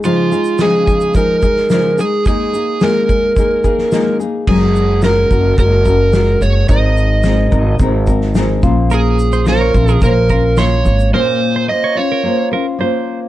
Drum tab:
CC |----------------|----------------|x---------------|----------------|
SH |x-xxx-xxx-x-x-x-|x-x-x-x-x-x-x-x-|--x-x-x-x-x-x-x-|x-x-x-x-x-x-x-x-|
SD |----o------oo---|----o------oo---|----o-------o---|----o------oo---|
BD |------o-o-o-----|o-----o-o-o-----|o-----o-o-o-----|o-----o-o-o---o-|

CC |----------------|----------------|
SH |x-xxx-xxx-x-x-xx|----------------|
SD |----o-------o---|----------------|
BD |------o-o-o-----|----------------|